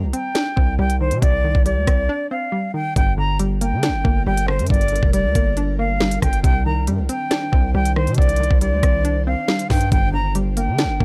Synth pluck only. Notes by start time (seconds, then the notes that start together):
Already playing: C3 D#3 G3
0.13 C4
0.35 D4
0.56 C4
0.79 G3
1.01 D#3
1.22 C3
1.44 D#3
1.66 G3
1.87 C4
2.09 D4
2.31 C4
2.52 G3
2.74 D#3
2.96 G2
3.18 D3
3.40 G3
3.61 A#3
3.83 D4
4.04 A#3
4.27 G3
4.48 D3
4.70 G2
4.92 D3
5.13 G3
5.35 A#3
5.57 D4
5.79 A#3
6.01 G3
6.22 D3
6.43 C3
6.66 D#3
6.88 G3
7.09 C4
7.31 D4
7.52 C4
7.75 G3
7.97 D#3
8.18 C3
8.40 D#3
8.62 G3
8.83 C4
9.05 D4
9.27 C4
9.48 G3
9.70 D#3
9.92 G2
10.13 D3
10.35 G3
10.57 A#3
10.79 D4
11.00 A#3